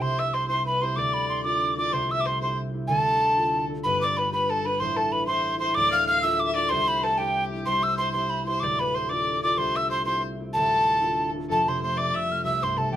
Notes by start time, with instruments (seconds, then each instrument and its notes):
Already playing: harp C4 D4 E4 G4 A4
0.00 harp C2 C3, fiddle C5, tin whistle C6
0.19 fiddle E5, tin whistle E6
0.34 fiddle C5, tin whistle C6
0.48 harp C4 E4 G4, fiddle C5, tin whistle C6
0.66 fiddle B4, tin whistle B5
0.81 harp C4 E4 G4, fiddle C5, tin whistle C6
0.96 harp D2 D3, fiddle D5, tin whistle D6
1.14 tin whistle B5
1.29 tin whistle C6
1.44 harp D4 F4 A4, fiddle D5, tin whistle D6
1.77 harp D4 F4 A4, fiddle D5, tin whistle D6
1.92 harp C2 C3, fiddle C5, tin whistle C6
2.11 fiddle E5, tin whistle E6
2.21 tin whistle D6
2.26 fiddle C5, tin whistle C6
2.40 harp C4 E4 G4, fiddle C5, tin whistle C6
2.73 harp C4 E4 G4
2.88 harp D2 D3, fiddle A4, tin whistle G#5
2.99 tin whistle A5
3.35 harp D4 F4
3.40 harp A4
3.69 harp D4 F4 A4
3.84 harp G1 G2, fiddle B4, tin whistle B5
4.01 fiddle D5, tin whistle D6
4.17 fiddle B4, tin whistle B5
4.31 harp D4 G4 B4, fiddle B4, tin whistle B5
4.50 fiddle A4, tin whistle A5
4.65 harp D4 G4 B4, fiddle B4, tin whistle B5
4.80 harp A1 A2, fiddle C5, tin whistle C6
4.96 fiddle A4, tin whistle A5
5.12 fiddle B4, tin whistle B5
5.27 harp E4 A4 C5, fiddle C5, tin whistle C6
5.59 harp E4 A4 C5, fiddle C5, tin whistle C6
5.75 harp D1 D2, fiddle D5, tin whistle D6
5.92 fiddle F5, tin whistle F6
6.08 fiddle F5, tin whistle F6
6.22 harp D4 F4 A4, fiddle E5, tin whistle E6
6.36 fiddle E5, tin whistle D6
6.45 fiddle E5
6.54 harp D4 F4 A4, fiddle D5, tin whistle D6
6.69 harp C2, fiddle C5, tin whistle C6
6.88 tin whistle B5
7.03 fiddle A4, tin whistle A5
7.18 harp C4 E4 G4, fiddle G4, tin whistle G5
7.52 harp C4 E4 G4
7.66 harp C2, fiddle C5, tin whistle C6
7.83 tin whistle E6
7.98 fiddle C5, tin whistle C6
8.12 harp C4 E4 G4, fiddle C5, tin whistle C6
8.30 tin whistle B5
8.46 harp C4 E4 G4, fiddle C5, tin whistle C6
8.60 harp D1 D2, fiddle D5, tin whistle D6
8.79 fiddle B4, tin whistle B5
8.94 fiddle C5, tin whistle C6
9.09 harp D4 F4 A4, fiddle D5, tin whistle D6
9.42 harp D4 F4 A4, fiddle D5, tin whistle D6
9.58 harp C2, fiddle C5, tin whistle C6
9.76 fiddle E5, tin whistle E6
9.90 fiddle C5, tin whistle C6
10.06 harp C4 E4 G4, fiddle C5, tin whistle C6
10.40 harp C4 E4 G4
10.53 harp D1 D2, fiddle A4, tin whistle A5
11.01 harp D4 F4 A4
11.34 harp D4 F4 A4
11.49 harp F1 F2, fiddle A4, tin whistle A5
11.67 harp C3, fiddle C5, tin whistle C6
11.82 harp A3, fiddle C5, tin whistle C6
11.97 harp C4, fiddle D5, tin whistle D6
12.14 harp C3, fiddle E5, tin whistle E6
12.30 harp A3, tin whistle F6
12.44 harp C2, fiddle E5, tin whistle E6
12.62 harp G2, fiddle C5, tin whistle C6
12.77 harp C3, fiddle A4, tin whistle A5
12.91 harp E3, fiddle G4, tin whistle G5